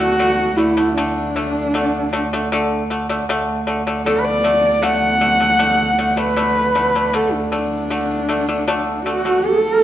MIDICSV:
0, 0, Header, 1, 5, 480
1, 0, Start_track
1, 0, Tempo, 770218
1, 123, Time_signature, 4, 2, 24, 8
1, 6129, End_track
2, 0, Start_track
2, 0, Title_t, "Horsehead fiddle"
2, 0, Program_c, 0, 110
2, 0, Note_on_c, 0, 66, 111
2, 352, Note_on_c, 0, 64, 89
2, 362, Note_off_c, 0, 66, 0
2, 592, Note_off_c, 0, 64, 0
2, 596, Note_on_c, 0, 62, 88
2, 1714, Note_off_c, 0, 62, 0
2, 2524, Note_on_c, 0, 69, 90
2, 2595, Note_on_c, 0, 71, 90
2, 2604, Note_off_c, 0, 69, 0
2, 2647, Note_on_c, 0, 74, 100
2, 2656, Note_off_c, 0, 71, 0
2, 3008, Note_on_c, 0, 78, 107
2, 3018, Note_off_c, 0, 74, 0
2, 3845, Note_on_c, 0, 71, 97
2, 3854, Note_off_c, 0, 78, 0
2, 4454, Note_on_c, 0, 69, 89
2, 4463, Note_off_c, 0, 71, 0
2, 4571, Note_on_c, 0, 62, 84
2, 4580, Note_off_c, 0, 69, 0
2, 5642, Note_off_c, 0, 62, 0
2, 5646, Note_on_c, 0, 66, 94
2, 5893, Note_on_c, 0, 69, 108
2, 5902, Note_off_c, 0, 66, 0
2, 6129, Note_off_c, 0, 69, 0
2, 6129, End_track
3, 0, Start_track
3, 0, Title_t, "Xiao"
3, 0, Program_c, 1, 77
3, 5646, Note_on_c, 1, 66, 75
3, 5887, Note_on_c, 1, 69, 96
3, 5897, Note_off_c, 1, 66, 0
3, 6129, Note_off_c, 1, 69, 0
3, 6129, End_track
4, 0, Start_track
4, 0, Title_t, "Pipa"
4, 0, Program_c, 2, 105
4, 0, Note_on_c, 2, 50, 60
4, 0, Note_on_c, 2, 57, 67
4, 95, Note_off_c, 2, 50, 0
4, 96, Note_off_c, 2, 57, 0
4, 120, Note_on_c, 2, 50, 80
4, 123, Note_on_c, 2, 57, 86
4, 314, Note_off_c, 2, 50, 0
4, 314, Note_off_c, 2, 57, 0
4, 359, Note_on_c, 2, 50, 65
4, 361, Note_on_c, 2, 57, 70
4, 457, Note_off_c, 2, 50, 0
4, 457, Note_off_c, 2, 57, 0
4, 479, Note_on_c, 2, 50, 68
4, 482, Note_on_c, 2, 57, 76
4, 577, Note_off_c, 2, 50, 0
4, 578, Note_off_c, 2, 57, 0
4, 607, Note_on_c, 2, 50, 82
4, 608, Note_on_c, 2, 57, 92
4, 797, Note_off_c, 2, 50, 0
4, 797, Note_off_c, 2, 57, 0
4, 847, Note_on_c, 2, 50, 68
4, 849, Note_on_c, 2, 57, 74
4, 1037, Note_off_c, 2, 50, 0
4, 1037, Note_off_c, 2, 57, 0
4, 1084, Note_on_c, 2, 50, 86
4, 1090, Note_on_c, 2, 57, 97
4, 1275, Note_off_c, 2, 50, 0
4, 1278, Note_off_c, 2, 57, 0
4, 1326, Note_on_c, 2, 50, 80
4, 1329, Note_on_c, 2, 57, 89
4, 1421, Note_off_c, 2, 50, 0
4, 1421, Note_off_c, 2, 57, 0
4, 1452, Note_on_c, 2, 50, 73
4, 1455, Note_on_c, 2, 57, 83
4, 1544, Note_off_c, 2, 50, 0
4, 1544, Note_off_c, 2, 57, 0
4, 1571, Note_on_c, 2, 50, 104
4, 1575, Note_on_c, 2, 57, 113
4, 1759, Note_off_c, 2, 50, 0
4, 1761, Note_off_c, 2, 57, 0
4, 1809, Note_on_c, 2, 50, 76
4, 1813, Note_on_c, 2, 57, 84
4, 1902, Note_off_c, 2, 50, 0
4, 1904, Note_off_c, 2, 57, 0
4, 1928, Note_on_c, 2, 50, 74
4, 1931, Note_on_c, 2, 57, 82
4, 2022, Note_off_c, 2, 50, 0
4, 2022, Note_off_c, 2, 57, 0
4, 2051, Note_on_c, 2, 50, 97
4, 2056, Note_on_c, 2, 57, 108
4, 2240, Note_off_c, 2, 50, 0
4, 2241, Note_off_c, 2, 57, 0
4, 2287, Note_on_c, 2, 50, 76
4, 2288, Note_on_c, 2, 57, 85
4, 2381, Note_off_c, 2, 50, 0
4, 2381, Note_off_c, 2, 57, 0
4, 2411, Note_on_c, 2, 50, 69
4, 2414, Note_on_c, 2, 57, 76
4, 2503, Note_off_c, 2, 50, 0
4, 2504, Note_off_c, 2, 57, 0
4, 2532, Note_on_c, 2, 50, 86
4, 2535, Note_on_c, 2, 57, 94
4, 2720, Note_off_c, 2, 50, 0
4, 2720, Note_off_c, 2, 57, 0
4, 2768, Note_on_c, 2, 50, 73
4, 2770, Note_on_c, 2, 57, 82
4, 2957, Note_off_c, 2, 50, 0
4, 2958, Note_off_c, 2, 57, 0
4, 3007, Note_on_c, 2, 50, 86
4, 3011, Note_on_c, 2, 57, 96
4, 3197, Note_off_c, 2, 50, 0
4, 3199, Note_off_c, 2, 57, 0
4, 3246, Note_on_c, 2, 50, 67
4, 3247, Note_on_c, 2, 57, 76
4, 3340, Note_off_c, 2, 57, 0
4, 3341, Note_off_c, 2, 50, 0
4, 3365, Note_on_c, 2, 50, 60
4, 3370, Note_on_c, 2, 57, 69
4, 3460, Note_off_c, 2, 50, 0
4, 3462, Note_off_c, 2, 57, 0
4, 3484, Note_on_c, 2, 50, 90
4, 3487, Note_on_c, 2, 57, 93
4, 3676, Note_off_c, 2, 50, 0
4, 3677, Note_off_c, 2, 57, 0
4, 3730, Note_on_c, 2, 50, 61
4, 3731, Note_on_c, 2, 57, 72
4, 3822, Note_off_c, 2, 57, 0
4, 3823, Note_off_c, 2, 50, 0
4, 3845, Note_on_c, 2, 50, 66
4, 3846, Note_on_c, 2, 57, 71
4, 3939, Note_off_c, 2, 57, 0
4, 3940, Note_off_c, 2, 50, 0
4, 3966, Note_on_c, 2, 50, 79
4, 3970, Note_on_c, 2, 57, 88
4, 4157, Note_off_c, 2, 50, 0
4, 4157, Note_off_c, 2, 57, 0
4, 4207, Note_on_c, 2, 50, 67
4, 4209, Note_on_c, 2, 57, 73
4, 4301, Note_off_c, 2, 50, 0
4, 4301, Note_off_c, 2, 57, 0
4, 4333, Note_on_c, 2, 50, 69
4, 4337, Note_on_c, 2, 57, 71
4, 4424, Note_off_c, 2, 50, 0
4, 4426, Note_off_c, 2, 57, 0
4, 4446, Note_on_c, 2, 50, 88
4, 4448, Note_on_c, 2, 57, 92
4, 4636, Note_off_c, 2, 50, 0
4, 4637, Note_off_c, 2, 57, 0
4, 4686, Note_on_c, 2, 50, 67
4, 4687, Note_on_c, 2, 57, 78
4, 4876, Note_off_c, 2, 50, 0
4, 4876, Note_off_c, 2, 57, 0
4, 4926, Note_on_c, 2, 50, 85
4, 4929, Note_on_c, 2, 57, 96
4, 5116, Note_off_c, 2, 50, 0
4, 5117, Note_off_c, 2, 57, 0
4, 5164, Note_on_c, 2, 50, 76
4, 5167, Note_on_c, 2, 57, 87
4, 5259, Note_off_c, 2, 50, 0
4, 5259, Note_off_c, 2, 57, 0
4, 5288, Note_on_c, 2, 50, 71
4, 5289, Note_on_c, 2, 57, 79
4, 5381, Note_off_c, 2, 50, 0
4, 5381, Note_off_c, 2, 57, 0
4, 5407, Note_on_c, 2, 50, 103
4, 5410, Note_on_c, 2, 57, 114
4, 5597, Note_off_c, 2, 50, 0
4, 5597, Note_off_c, 2, 57, 0
4, 5645, Note_on_c, 2, 50, 71
4, 5648, Note_on_c, 2, 57, 81
4, 5740, Note_off_c, 2, 50, 0
4, 5741, Note_off_c, 2, 57, 0
4, 5765, Note_on_c, 2, 50, 71
4, 5768, Note_on_c, 2, 57, 78
4, 5859, Note_off_c, 2, 50, 0
4, 5861, Note_off_c, 2, 57, 0
4, 6129, End_track
5, 0, Start_track
5, 0, Title_t, "Double bass"
5, 0, Program_c, 3, 43
5, 0, Note_on_c, 3, 38, 66
5, 2047, Note_off_c, 3, 38, 0
5, 2051, Note_on_c, 3, 38, 67
5, 5934, Note_off_c, 3, 38, 0
5, 6129, End_track
0, 0, End_of_file